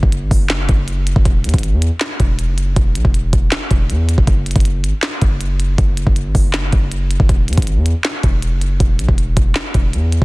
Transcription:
0.03 F#1, kick
0.12 closed hi-hat
0.22 G#1
0.31 F#1, kick, open hi-hat
0.50 snare, clap, closed hi-hat
0.69 F#1, kick, closed hi-hat
0.88 closed hi-hat
1.07 closed hi-hat
1.16 F#1, kick
1.25 E1, kick, closed hi-hat
1.44 E2, closed hi-hat
1.49 closed hi-hat
1.54 G#1, kick, closed hi-hat
1.58 closed hi-hat
1.63 closed hi-hat
1.73 E2
1.82 closed hi-hat
2.01 snare, clap, closed hi-hat
2.20 E1, kick, closed hi-hat
2.39 closed hi-hat
2.48 F#1
2.58 closed hi-hat
2.76 E1, kick, closed hi-hat
2.95 B1, closed hi-hat
3.05 E1, kick
3.14 closed hi-hat
3.33 E1, kick, closed hi-hat
3.52 snare, clap, closed hi-hat
3.71 E1, kick, closed hi-hat
3.90 E2, closed hi-hat
4.09 closed hi-hat
4.18 E1, kick
4.27 F#1, kick, closed hi-hat
4.46 closed hi-hat
4.51 closed hi-hat
4.56 F#1, kick, closed hi-hat
4.60 closed hi-hat
4.65 closed hi-hat
4.84 G#1, closed hi-hat
5.03 snare, clap, closed hi-hat
5.22 F#1, kick, closed hi-hat
5.41 closed hi-hat
5.60 closed hi-hat
5.78 F#1, kick, closed hi-hat
5.97 closed hi-hat
6.07 F#1, kick
6.16 closed hi-hat
6.25 G#1
6.35 F#1, kick, open hi-hat
6.54 snare, clap, closed hi-hat
6.73 F#1, kick, closed hi-hat
6.92 closed hi-hat
7.11 closed hi-hat
7.20 F#1, kick
7.29 E1, kick, closed hi-hat
7.48 E2, closed hi-hat
7.53 closed hi-hat
7.58 G#1, kick, closed hi-hat
7.62 closed hi-hat
7.67 closed hi-hat
7.76 E2
7.86 closed hi-hat
8.04 snare, clap, closed hi-hat
8.23 E1, kick, closed hi-hat
8.42 closed hi-hat
8.52 F#1
8.61 closed hi-hat
8.80 E1, kick, closed hi-hat
8.99 B1, closed hi-hat
9.09 E1, kick
9.18 closed hi-hat
9.37 E1, kick, closed hi-hat
9.55 snare, clap, closed hi-hat
9.74 E1, kick, closed hi-hat
9.93 E2, closed hi-hat
10.12 closed hi-hat
10.22 E1, kick

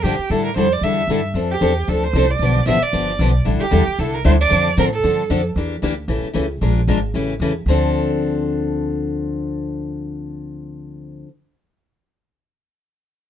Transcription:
0.03 G2 D3 F3 A#3 D4 G4
0.18 muted upright bass stroke
0.30 A2 D3 G3 D4 E4 A4
0.44 A#4
0.56 F2 D3 G3 D4 E4 A4 C5
0.72 D5
0.81 E2 D3 G3 D4 E4 A4 E5
1.08 G2 D3 G3 D4 E4 A4
1.34 F2 F3 C4 D4 A4
1.51 G4
1.61 E2 F3 C4 D4 A4
1.88 D2 F3 C4 D4 A4
2.04 C5
2.13 C2 F3 C4 D4 A4
2.30 D5
2.39 B1 D3 F3 B3 D4 G4
2.66 A1 D3 F3 B3 D4 G4 E5
2.81 D5, muted upright bass stroke
2.92 G1 D3 F3 B3 D4 G4
3.19 B1 D3 F3 B3 D4 G4
3.45 A1 D3 G3 D4 E4 A4
3.60 G4, muted upright bass stroke
3.71 E2 D3 G3 D4 E4 A4
3.87 muted upright bass stroke
3.99 C2 D3 G3 D4 E4 A4
4.14 A#4
4.25 D2 D3 G3 D4 E4 A4 C5
4.41 D5
4.49 F2 D3 F3 C4 D4 A4
4.77 A2 D3 F3 C4 D4 A4 A#4
4.92 A4
5.03 G2 D3 F3 C4 D4 A4
5.30 F2 D3 F3 C4 D4 A4
5.56 E2 E3 A#3 D4 G4
5.82 D2 E3 A#3 D4 G4
6.08 A1 C#3 E3 A3 C#4 G4
6.23 muted upright bass stroke
6.33 C#2 C#3 E3 A3 C#4 G4
6.61 A#1 F3 G#3 D4 F4 A#4
6.87 G#1 F3 G#3 D4 F4 A#4
7.14 A1 C#3 E3 A3 C#4 G4
7.40 E2 C#3 E3 A3 C#4 G4
7.66 D2 D3 F3 C4
7.70 D4 A4

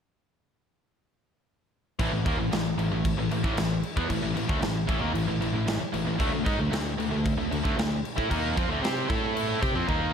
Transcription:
1.99 A1 A2 E3, kick, crash
2.11 A1 A2 E3
2.25 D#2 D#3 A#3, kick, crash
2.37 A1 A2 E3
2.51 A1 A2 E3, snare, crash
2.77 A1 A2 E3, crash
2.91 A1 A2 E3
3.05 kick, crash
3.17 A1 A2 E3
3.31 A1 A2 E3, crash
3.43 A1 A2 E3, kick
3.56 A1 A2 E3, snare, crash
3.83 crash
3.96 E2 E3 B3, kick
4.09 A1 A2 E3, kick, crash
4.22 A1 A2 E3
4.36 A1 A2 E3, crash
4.48 D2 D3 A3, kick
4.62 A1 A2 E3, snare, crash
4.87 A1 A2 E3, kick, crash
5.01 D#2 D#3 A#3
5.14 A1 A2 E3, crash
5.28 A1 A2 E3
5.40 A1 A2 E3, crash
5.54 A1 A2 E3
5.67 A1 A2 E3, snare, crash
5.82 muted distorted electric guitar stroke
5.94 A1 A2 E3, crash
6.07 A1 A2 E3
6.19 D2 D3 A3, kick, crash
6.33 D2 D3 A3
6.45 G#2 G#3 D#4, kick, crash
6.59 D2 D3 A3
6.72 D2 D3 A3, snare, crash
6.99 D2 D3 A3, crash
7.11 D2 D3 A3
7.26 kick, crash
7.38 D2 D3 A3
7.51 D2 D3 A3, crash
7.63 D2 D3 A3, kick
7.77 D2 D3 A3, snare, crash
8.05 crash
8.17 A2 A3 E4, kick
8.29 D#2 D#3 A#3 D#4, kick, crash
8.56 F2 F3 C4, kick, crash
8.69 D2 D3 A3
8.82 C3 C4 G4 C5, snare, crash
9.10 A2 A3 E4 A4, kick, crash
9.37 crash
9.62 C3 C4 G4, kick, crash
9.75 F2 F3 C4
9.89 D#2 D#3 A#3 D#4, kick

